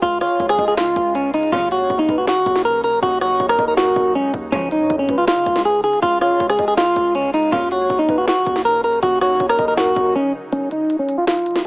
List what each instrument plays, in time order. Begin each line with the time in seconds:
Already playing: ambient pad C#3 G#3 F4
0.02 808-style bass C#2, clean electric guitar F4, kick, closed hi-hat
0.21 clean electric guitar F4, soft synth lead C#5, cross-stick, open hi-hat
0.40 808-style bass C#2, kick, closed hi-hat
0.49 clean electric guitar G#4, cross-stick
0.59 808-style bass C#2, soft synth lead D#5, kick, closed hi-hat
0.68 clean electric guitar G#4
0.77 clean electric guitar F4, snare, closed hi-hat
0.96 808-style bass C#2, kick, closed hi-hat
1.15 clean electric guitar C#4, closed hi-hat
1.34 clean electric guitar D#4, closed hi-hat
1.43 closed hi-hat
1.52 808-style bass D#2, string section F#2 A#2 C#3, ambient pad F#3 D#4, clean electric guitar F4, kick, closed hi-hat
1.71 clean electric guitar F#4, soft synth lead C#5, closed hi-hat
1.90 808-style bass D#2, kick, closed hi-hat
1.99 clean electric guitar D#4
2.09 808-style bass D#2, soft synth lead B4, kick, closed hi-hat
2.18 clean electric guitar F#4
2.27 clean electric guitar F#4, snare, closed hi-hat
2.46 808-style bass D#2, kick, closed hi-hat
2.56 snare
2.65 clean electric guitar A#4, closed hi-hat
2.84 clean electric guitar A#4, closed hi-hat
2.93 closed hi-hat
3.03 808-style bass D#2, clean electric guitar F#4, kick
3.21 clean electric guitar F#4, soft synth lead C#5, cross-stick
3.40 808-style bass D#2, kick
3.49 clean electric guitar A#4, cross-stick
3.59 808-style bass D#2, soft synth lead D#5, kick
3.68 clean electric guitar A#4
3.77 clean electric guitar F#4, soft synth lead A#4, snare
3.96 808-style bass D#2, kick
4.15 808-style bass C#2, clean electric guitar C#4
4.34 808-style bass D#2, kick
4.52 808-style bass C#2, string section G#2 C#3 F3, ambient pad G#3 F4, clean electric guitar C#4, kick, closed hi-hat
4.71 clean electric guitar D#4, soft synth lead C#5, closed hi-hat
4.81 808-style bass G#2
4.90 808-style bass F2, kick, closed hi-hat
4.99 clean electric guitar C#4
5.09 808-style bass C#2, soft synth lead B4, kick, closed hi-hat
5.18 clean electric guitar F4
5.27 clean electric guitar F4, snare, closed hi-hat
5.46 808-style bass C#2, kick, closed hi-hat
5.56 snare
5.65 clean electric guitar G#4, closed hi-hat
5.84 clean electric guitar G#4, closed hi-hat
5.93 closed hi-hat
6.02 808-style bass C#2, clean electric guitar F4, kick, closed hi-hat
6.21 clean electric guitar F4, soft synth lead C#5, cross-stick, open hi-hat
6.40 808-style bass C#2, kick, closed hi-hat
6.49 clean electric guitar G#4, cross-stick
6.59 808-style bass C#2, soft synth lead D#5, kick, closed hi-hat
6.68 clean electric guitar G#4
6.77 clean electric guitar F4, snare, closed hi-hat
6.96 808-style bass C#2, kick, closed hi-hat
7.15 clean electric guitar C#4, closed hi-hat
7.34 clean electric guitar D#4, closed hi-hat
7.43 closed hi-hat
7.52 808-style bass D#2, string section F#2 A#2 C#3, ambient pad C#3 F#3 D#4, clean electric guitar F4, kick, closed hi-hat
7.71 clean electric guitar F#4, soft synth lead C#5, closed hi-hat
7.90 808-style bass D#2, kick, closed hi-hat
7.99 clean electric guitar D#4
8.09 808-style bass D#2, soft synth lead B4, kick, closed hi-hat
8.18 clean electric guitar F#4
8.28 clean electric guitar F#4, snare, closed hi-hat
8.46 808-style bass D#2, kick, closed hi-hat
8.56 snare
8.65 clean electric guitar A#4, closed hi-hat
8.84 clean electric guitar A#4, closed hi-hat
8.93 closed hi-hat
9.03 808-style bass D#2, clean electric guitar F#4, kick, closed hi-hat
9.21 clean electric guitar F#4, soft synth lead C#5, cross-stick, open hi-hat
9.40 808-style bass D#2, kick, closed hi-hat
9.49 clean electric guitar A#4, cross-stick
9.59 808-style bass D#2, soft synth lead D#5, kick, closed hi-hat
9.68 clean electric guitar A#4
9.77 clean electric guitar F#4, soft synth lead A#4, snare, closed hi-hat
9.96 808-style bass D#2, kick, closed hi-hat
10.16 clean electric guitar C#4
10.53 clean electric guitar C#4, closed hi-hat
10.71 clean electric guitar D#4, closed hi-hat
10.90 closed hi-hat
10.99 clean electric guitar C#4
11.09 closed hi-hat
11.18 clean electric guitar F4
11.27 clean electric guitar F4, snare, closed hi-hat
11.46 closed hi-hat
11.56 snare